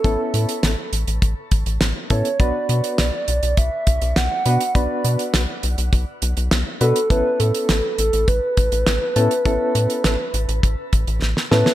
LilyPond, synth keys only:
\new Staff \with { instrumentName = "Synth keys" } { \time 4/4 \key a \mixolydian \tempo 4 = 102 <b cis' e' a'>4 r2 r8 <b cis' e' a'>8 | <b d' fis' b'>4 r2 r8 <b d' fis' b'>8 | <b d' fis' b'>4 r2 r8 <b d' fis' b'>8 | <b cis' e' a'>4 r2 r8 <b cis' e' a'>8 |
<b cis' e' a'>4 r2 r8 <b cis' e' a'>8 | }